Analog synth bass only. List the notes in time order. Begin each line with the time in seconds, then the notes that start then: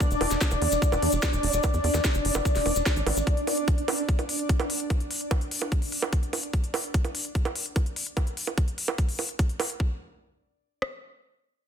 0.11 E1
0.21 E1
0.31 E1
0.51 E1
0.62 E2
0.72 E1
0.92 E1
1.02 E2
1.13 E1
1.33 E1
1.43 E1
1.53 E1
1.74 E2
1.84 E2
1.94 E2
2.15 F#1
2.25 F#1
2.35 F#1
2.56 E1
2.66 E1
2.76 E1
2.96 A1
3.07 A1
3.17 A1